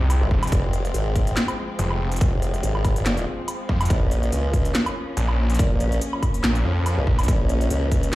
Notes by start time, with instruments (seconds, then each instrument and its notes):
Already playing: detuned saw bass C2, string section F3 G#3 C4
0.10 closed hi-hat, low woodblock
0.21 wobble bass G#1
0.31 detuned saw bass F1, kick
0.43 closed hi-hat, low woodblock
0.47 closed hi-hat
0.52 wobble bass F1, kick, closed hi-hat
0.73 closed hi-hat
0.85 closed hi-hat
0.94 wobble bass G#1, closed hi-hat
1.16 kick, closed hi-hat
1.27 closed hi-hat
1.37 snare, clap, closed hi-hat
1.48 closed hi-hat, low woodblock
1.79 detuned saw bass F1, closed hi-hat
1.90 low woodblock
2.12 closed hi-hat
2.16 closed hi-hat
2.21 wobble bass F1, kick, closed hi-hat
2.42 closed hi-hat
2.54 closed hi-hat
2.63 wobble bass G#1, closed hi-hat
2.75 low woodblock
2.85 kick, closed hi-hat, low woodblock
2.96 closed hi-hat
3.06 snare, clap, closed hi-hat
3.17 closed hi-hat
3.48 closed hi-hat, low woodblock
3.69 detuned saw bass F2, kick
3.81 closed hi-hat, low woodblock
3.85 closed hi-hat
3.90 wobble bass A#1, string section A#3 C#4, kick, closed hi-hat
4.11 closed hi-hat
4.23 closed hi-hat
4.32 wobble bass C#2, closed hi-hat
4.54 kick, closed hi-hat
4.65 closed hi-hat
4.75 snare, clap, closed hi-hat
4.86 closed hi-hat, low woodblock
5.17 detuned saw bass A#1, closed hi-hat
5.29 low woodblock
5.50 closed hi-hat
5.54 closed hi-hat
5.59 wobble bass A#1, kick, closed hi-hat
5.80 closed hi-hat
5.92 closed hi-hat
6.01 closed hi-hat
6.13 low woodblock
6.23 kick, closed hi-hat, low woodblock
6.34 closed hi-hat
6.44 detuned saw bass A#1, snare, clap, closed hi-hat
6.55 closed hi-hat
6.65 detuned saw bass F2
6.86 closed hi-hat, low woodblock
6.98 wobble bass C#2
7.07 detuned saw bass A#1, kick
7.19 closed hi-hat, low woodblock
7.23 closed hi-hat
7.28 wobble bass A#1, kick, closed hi-hat
7.49 closed hi-hat
7.61 closed hi-hat
7.70 wobble bass C#2, closed hi-hat
7.92 kick, closed hi-hat
8.03 closed hi-hat